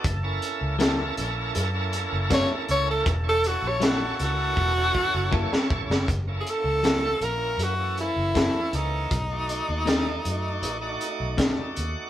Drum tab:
HH |x-x-x-x-x-x-x-x-|x-x-x-x---------|x-x-x-x-x-x-x-x-|x-x-x-x-x-x-x-x-|
SD |----o-------o---|----o--------o-o|----o-------o---|----o-------o---|
BD |o-----------o---|o-------o-o-o-o-|o-----------o---|o-----------o---|